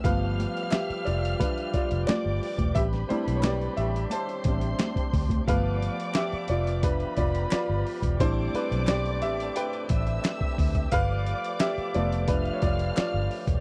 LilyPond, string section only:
\new Staff \with { instrumentName = "String section" } { \time 4/4 \key g \mixolydian \tempo 4 = 88 <f'' f'''>2. <d'' d'''>4 | <b' b''>2 <c'' c'''>2 | <d'' d'''>2 <b' b''>2 | <d'' d'''>2~ <d'' d'''>8 <e'' e'''>4. |
<d'' d'''>2 <f'' f'''>2 | }